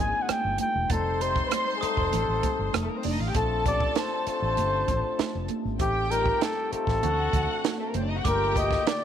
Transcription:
Already playing: tine electric piano G3 G#3 A#3 B3 C4 D4 D#4 F4, violin section G#4 G#5
0.00 fingered electric bass G#1, flugelhorn G#5
0.22 flugelhorn F#5
0.29 flugelhorn G5, muted fingered electric bass stroke, cross-stick, closed hi-hat, high conga
0.45 fingered electric bass G1
0.58 flugelhorn G5, closed hi-hat, high conga
0.75 fingered electric bass E1
0.90 fingered electric bass F1, tine electric piano G3 A3 C4 D#4, flugelhorn A4, violin section C5 C6, glockenspiel A6, kick, closed hi-hat, muted conga
1.21 tine electric piano G3 G#3 C4 D#4, flugelhorn C5, closed hi-hat
1.28 tine electric piano A3
1.36 kick, cross-stick
1.46 flugelhorn B4
1.51 flugelhorn C5, cross-stick, closed hi-hat, high conga
1.77 tine electric piano G3, flugelhorn G#4
1.81 tine electric piano A3 C4 D#4, flugelhorn A4, glockenspiel D#6, muted fingered electric bass stroke, closed hi-hat
1.97 fingered electric bass F1, kick
2.12 fingered electric bass A1, closed hi-hat, muted conga, low conga
2.28 fingered electric bass A1
2.43 kick, closed hi-hat, muted conga, low conga
2.59 fingered electric bass G1
2.73 fingered electric bass F1, cross-stick, closed hi-hat, high conga
2.82 violin section A3 A4
2.89 violin section A#3 A#4
2.97 violin section C4 C5
3.03 fingered electric bass F1, violin section D4 D5, open hi-hat, high conga
3.12 violin section D#4 D#5
3.20 fingered electric bass A1, violin section F4 F5
3.28 violin section G4 G5
3.34 fingered electric bass A#1, tine electric piano A3 C4 D4 F4, violin section A4 A5, flugelhorn A4, kick, closed hi-hat, muted conga
3.66 tine electric piano A3 C4 C#4 G4, flugelhorn D5, kick, closed hi-hat, muted conga
3.73 tine electric piano D4
3.80 kick
3.90 flugelhorn D5
3.96 flugelhorn C5, snare, closed hi-hat, high conga
4.27 tine electric piano A3 C4 D4 F4, flugelhorn C5, muted fingered electric bass stroke, closed hi-hat
4.42 fingered electric bass A1
4.57 fingered electric bass G1, closed hi-hat, muted conga
4.88 fingered electric bass A1, kick, closed hi-hat, muted conga, low conga
5.19 muted fingered electric bass stroke, snare, closed hi-hat, high conga
5.35 fingered electric bass F1
5.48 closed hi-hat, high conga
5.65 fingered electric bass G#1
5.79 fingered electric bass A1, tine electric piano A3 C4 D#4 G4, flugelhorn G4, violin section G4 G5, kick, closed hi-hat, muted conga
6.10 tine electric piano G3 C4 D#4 F4, flugelhorn A#4, closed hi-hat, muted conga
6.18 tine electric piano G4
6.26 kick
6.41 flugelhorn A4, snare, closed hi-hat, high conga
6.71 tine electric piano A3 C4 D#4 F4, flugelhorn A4, muted fingered electric bass stroke, closed hi-hat
6.87 fingered electric bass A1, kick, snare
7.03 fingered electric bass D2, tine electric piano A3 C4 D4 F#4, violin section F#4 F#5, closed hi-hat, muted conga, low conga
7.33 fingered electric bass D2, kick, closed hi-hat, muted conga, low conga
7.64 snare, closed hi-hat, high conga
7.79 violin section A3 A4
7.87 violin section A#3 A#4
7.94 fingered electric bass F#1, violin section C4 C5, closed hi-hat, high conga
8.02 violin section D4 D5
8.09 violin section D#4 D#5
8.17 violin section F#4 F#5
8.24 fingered electric bass G1, tine electric piano A3 A#3 D4 F4, violin section G4 G5, glockenspiel D6, kick, closed hi-hat, muted conga
8.28 flugelhorn A#4
8.55 tine electric piano D3 A3 A#3 F#4, flugelhorn D#5, kick, closed hi-hat, muted conga
8.63 tine electric piano G4
8.71 kick, snare
8.87 flugelhorn D5, snare, closed hi-hat, high conga

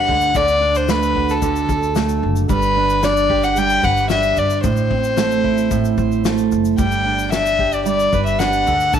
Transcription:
Already playing: steel-string acoustic guitar G3 D4 G4 B4, violin F#5
0.08 upright bass D2, steel-string acoustic guitar D3
0.21 shaker
0.35 steel-string acoustic guitar D3, violin D5, kick, shaker
0.48 shaker
0.62 steel-string acoustic guitar D4
0.75 violin C5, shaker
0.89 steel-string acoustic guitar A3, violin B4, snare, shaker
1.03 shaker
1.15 steel-string acoustic guitar F#4, kick
1.29 violin A4, snare, shaker
1.42 steel-string acoustic guitar D3, kick, shaker
1.56 shaker
1.69 upright bass D2, steel-string acoustic guitar A4, kick, shaker
1.83 shaker
1.95 steel-string acoustic guitar A3, snare, shaker
2.09 shaker
2.23 upright bass F#1
2.36 shaker
2.49 upright bass G1, steel-string acoustic guitar G3, violin B4, kick, shaker
2.62 shaker
2.77 steel-string acoustic guitar D4
2.90 shaker
3.03 steel-string acoustic guitar D4, violin D5, snare, shaker
3.17 shaker
3.30 steel-string acoustic guitar G4, kick
3.43 violin F#5, snare, shaker
3.56 steel-string acoustic guitar G3, violin G5, shaker
3.70 shaker
3.83 upright bass G1, steel-string acoustic guitar B4, violin F#5, kick, shaker
3.97 shaker
4.09 steel-string acoustic guitar D4, violin E5, snare, shaker
4.23 shaker
4.37 upright bass G1, violin D5, shaker
4.50 shaker
4.64 upright bass A1, steel-string acoustic guitar A2, violin C5, kick, shaker
4.77 shaker
4.91 steel-string acoustic guitar C4, kick
5.04 shaker
5.17 steel-string acoustic guitar A3, snare, shaker
5.31 shaker
5.44 steel-string acoustic guitar E4, kick
5.58 shaker
5.71 steel-string acoustic guitar A2, kick, shaker
5.85 shaker
5.98 upright bass A1, steel-string acoustic guitar C5, kick, shaker
6.12 shaker
6.25 steel-string acoustic guitar A3, snare, shaker
6.38 shaker
6.52 upright bass F#1, shaker
6.65 shaker
6.78 upright bass G1, steel-string acoustic guitar G3, violin G5, kick, shaker
6.91 shaker
7.06 steel-string acoustic guitar D4
7.19 shaker
7.32 steel-string acoustic guitar D4, violin E5, snare, shaker
7.46 shaker
7.59 steel-string acoustic guitar G4, kick
7.72 violin D5, shaker
7.86 steel-string acoustic guitar G3, violin D5, shaker
8.00 shaker
8.13 upright bass G1, steel-string acoustic guitar B4, kick, shaker
8.26 violin E5, shaker
8.39 steel-string acoustic guitar D4, violin F#5, snare, shaker
8.53 shaker
8.67 upright bass D2, steel-string acoustic guitar D3, shaker
8.80 shaker
8.93 steel-string acoustic guitar D3, violin A5, kick, shaker

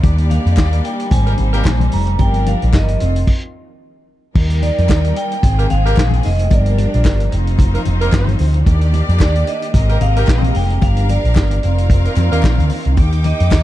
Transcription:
Already playing: string section D#3
0.02 picked electric bass D#2, string section G3 A#3 D4 G4 D5, kick, closed hi-hat, muted conga
0.18 closed hi-hat
0.30 vibraphone F5, closed hi-hat, muted conga
0.46 picked electric bass F2, closed hi-hat
0.57 picked electric bass D#2, kick, snare, clap, high conga
0.59 clap
0.73 closed hi-hat
0.84 vibraphone G5, closed hi-hat
1.00 closed hi-hat
1.11 picked electric bass G#1, string section C3 G3 C4 D#4 C5, vibraphone G#5, kick, closed hi-hat, low conga
1.27 horn section A#3 D#4 G4 A#4, closed hi-hat
1.37 picked electric bass G#1, closed hi-hat, muted conga
1.53 horn section A#3 D#4 G4 A#4, closed hi-hat
1.65 picked electric bass A#1, kick, snare, clap, high conga
1.67 clap
1.80 closed hi-hat, high conga
1.91 picked electric bass F1, vibraphone A#5, open hi-hat
2.07 closed hi-hat
2.19 picked electric bass G1, string section F3 A#3 D4 A#4, vibraphone G5, kick, closed hi-hat, muted conga
2.34 closed hi-hat
2.46 vibraphone F5, closed hi-hat, muted conga
2.62 picked electric bass A#1, closed hi-hat
2.73 picked electric bass G1, vibraphone D#5, kick, snare, clap, high conga
2.88 closed hi-hat
3.00 picked electric bass F1, string section D#3 C4 F4, closed hi-hat
3.16 closed hi-hat
3.27 kick, crash
4.35 picked electric bass D#2, string section D#3 G3 A#3 D#4 A#4 D5 G5, kick, crash, muted conga
4.50 closed hi-hat
4.63 vibraphone D5, closed hi-hat, muted conga
4.78 picked electric bass F2, closed hi-hat
4.89 picked electric bass D#2, kick, snare, clap, high conga
4.91 clap
5.04 closed hi-hat
5.16 vibraphone G5, closed hi-hat
5.31 closed hi-hat
5.43 picked electric bass G#1, string section C3 D#3 G#3 C4 G#4, kick, closed hi-hat, muted conga, low conga
5.59 horn section A#3 D#4 G4 A#4, closed hi-hat
5.70 picked electric bass G#1, vibraphone F5, closed hi-hat, muted conga
5.85 horn section A#3 D#4 G4 A#4, closed hi-hat
5.97 picked electric bass A#1, kick, snare, clap, high conga
6.00 clap
6.11 closed hi-hat, high conga
6.23 picked electric bass F1, vibraphone D#5, snare, open hi-hat
6.39 closed hi-hat
6.51 picked electric bass G1, string section F3 G3 D4 A#4, vibraphone D5, kick, closed hi-hat, muted conga
6.66 closed hi-hat
6.78 closed hi-hat, muted conga
6.94 picked electric bass A#1, closed hi-hat
7.05 kick, snare, clap, high conga
7.20 closed hi-hat
7.31 picked electric bass F1, string section D#3 F3 C4 D#4 F4 C5, closed hi-hat
7.47 closed hi-hat
7.58 kick, closed hi-hat, muted conga, low conga
7.73 horn section A#3 D#4 F4 A#4, closed hi-hat
7.85 picked electric bass F1, closed hi-hat, muted conga
8.00 horn section A#3 D#4 F4 A#4, closed hi-hat
8.13 picked electric bass G1, kick, snare, clap, high conga
8.14 clap
8.28 closed hi-hat, high conga
8.39 picked electric bass D2, snare, open hi-hat
8.54 closed hi-hat
8.66 picked electric bass D#2, string section A#3 D4 G4 D5, kick, closed hi-hat, muted conga
8.81 closed hi-hat
8.94 closed hi-hat, muted conga
9.09 picked electric bass F2, closed hi-hat
9.20 picked electric bass D#2, vibraphone D5, kick, snare, clap, high conga
9.22 clap
9.35 closed hi-hat
9.47 vibraphone D#5, closed hi-hat
9.62 closed hi-hat
9.73 picked electric bass G#1, string section C3 G#3 A#3 C4 A#4 D#5, kick, closed hi-hat, muted conga, low conga
9.89 horn section A#3 D#4 G4 A#4, closed hi-hat
10.01 picked electric bass G#1, vibraphone F5, closed hi-hat, muted conga
10.16 horn section A#3 D#4 G4 A#4, closed hi-hat
10.27 picked electric bass A#1, kick, snare, clap, high conga
10.30 clap
10.42 closed hi-hat, high conga
10.54 picked electric bass F1, vibraphone G5, open hi-hat
10.70 closed hi-hat
10.82 picked electric bass G1, string section F3 G3 D4 A#4 F5, vibraphone F5, kick, closed hi-hat, muted conga
10.97 closed hi-hat
11.09 vibraphone D5, closed hi-hat, muted conga
11.24 picked electric bass A#1, closed hi-hat
11.35 picked electric bass G1, kick, snare, clap, high conga
11.38 clap
11.51 closed hi-hat
11.63 picked electric bass F1, string section D#3 C4 F4 A#4 F5, closed hi-hat
11.78 closed hi-hat
11.89 kick, closed hi-hat, low conga
12.05 horn section A#3 D#4 F4 A#4, closed hi-hat
12.16 picked electric bass F2, clap, closed hi-hat, muted conga
12.32 picked electric bass D#2, horn section A#3 D#4 F4 A#4, closed hi-hat
12.43 picked electric bass A#1, kick, snare, clap, high conga
12.46 clap
12.58 picked electric bass D2, closed hi-hat, high conga
12.69 open hi-hat
12.85 picked electric bass C2, closed hi-hat
12.97 picked electric bass D#2, string section D#4 G4 G5 D6, kick, closed hi-hat, muted conga
13.12 closed hi-hat
13.24 vibraphone D#5, closed hi-hat, muted conga
13.40 picked electric bass F2, closed hi-hat
13.51 picked electric bass D#2, kick, snare, clap, high conga

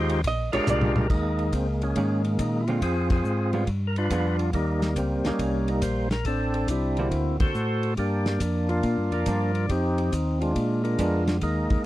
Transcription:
Already playing: tonewheel organ D#2 G#3 D#4 F4 G4 C5
0.09 ride
0.24 tonewheel organ A#1, hollow-body jazz guitar D#5, kick, ride
0.52 tonewheel organ A#1 G#3 D4 F4 G4 A#4, hollow-body jazz guitar C#5, ride
0.67 tonewheel organ C2, hollow-body jazz guitar D5, hi-hat pedal, mid tom
0.81 mid tom
0.96 tonewheel organ A#4, mid tom
1.10 tonewheel organ D#2 G#3 A#3 D#4, kick, crash
1.39 ride
1.53 tonewheel organ C#2 C4, kick, hi-hat pedal, ride
1.82 tonewheel organ G#3 A#3 C#4, ride
1.96 tonewheel organ G#2, hollow-body jazz guitar D#3 A#3 C#4 G#4, kick, ride
2.24 ride
2.39 tonewheel organ A#2 D#4, kick, hi-hat pedal, ride
2.61 tonewheel organ E4
2.67 hollow-body jazz guitar D3 G#3 C4 F4, tonewheel organ F4, ride
2.81 tonewheel organ F2 C4 F4 G#4, kick, ride
3.10 tonewheel organ C4 F4 G#4, kick, ride
3.25 tonewheel organ G#2, hi-hat pedal
3.53 hollow-body jazz guitar G3 B3 F4 G#4, ride
3.67 tonewheel organ G2, kick, ride
3.87 tonewheel organ A#4
3.96 tonewheel organ D4 F4 B4, ride
4.10 tonewheel organ F2, hollow-body jazz guitar G3 B3 F4 G#4, kick, hi-hat pedal, ride
4.39 ride
4.53 tonewheel organ D#2 G3 A#3 D#4, kick, ride
4.82 snare, ride
4.96 tonewheel organ C#2 C4, kick, hi-hat pedal, ride
5.24 tonewheel organ C#2 G3 A#3 C#4, hollow-body jazz guitar G3 A#3 D#4, snare, ride
5.39 tonewheel organ C2, kick, ride
5.68 tonewheel organ D#4, ride
5.82 tonewheel organ A#1 C5, kick, hi-hat pedal, ride
6.11 tonewheel organ A#4, snare, ride
6.25 tonewheel organ A1 C4 D4 A4, kick, ride
6.54 tonewheel organ A4, ride
6.68 tonewheel organ C2 G3 C4 E4, kick, hi-hat pedal, ride
6.97 hollow-body jazz guitar D3 A#3 C4 F#4, ride
7.11 tonewheel organ D2, kick, ride
7.40 tonewheel organ D2 F#4 A4 C5, kick, ride
7.55 tonewheel organ A2, hi-hat pedal
7.83 ride
7.97 tonewheel organ G2 A#3 D4 G4, kick, ride
8.26 snare, ride
8.40 tonewheel organ F2 D4, kick, hi-hat pedal, ride
8.69 tonewheel organ A#3 D4 F4, ride
8.83 tonewheel organ A#2, kick, ride
8.98 tonewheel organ G2
9.11 tonewheel organ F2 F4 A#4 D5, ride
9.26 tonewheel organ G2, hollow-body jazz guitar F3 A#3 D4, kick, hi-hat pedal, ride
9.55 ride
9.69 tonewheel organ F2 C4 D#4 G4, kick, ride
9.98 ride
10.12 tonewheel organ D#2 D#4, kick, hi-hat pedal, ride
10.41 tonewheel organ G#3 D4 F4, ride
10.56 tonewheel organ A#2, kick, ride
10.84 tonewheel organ D4 F4 A#4, ride
10.99 tonewheel organ F2, hollow-body jazz guitar G#3 B3 D4, kick, hi-hat pedal, ride
11.27 snare, ride
11.41 tonewheel organ D#2 G#3 A#3 D#4, kick, ride
11.70 tonewheel organ D#2, kick, ride

